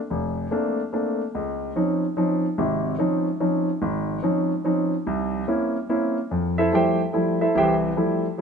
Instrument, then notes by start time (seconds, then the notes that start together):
grand piano
0.10 F1
0.51 A3 A#3 C4 D4
0.93 A3 A#3 C4 D4
1.35 C#2
1.76 F3 C4 C#4 D#4
2.17 F3 C4 C#4 D#4
2.58 G#1 C3
2.99 F3 C4 C#4 D#4
3.40 F3 C4 C#4 D#4
3.82 G#1
4.23 F3 C4 C#4 D#4
4.65 F3 C4 C#4 D#4
5.07 C2
5.48 A#3 C4 C#4 E4
5.89 A#3 C4 C#4 E4
6.31 F2
6.58 E4 A4 C5 E5
6.72 F3 G3 A3 E4 G4 C5 E5 G5
7.13 F3 G3 A3 E4
7.41 E4 A4 C5 E5
7.55 C2 E3 G4 C5 E5 G5
7.97 F3 G3 A3 E4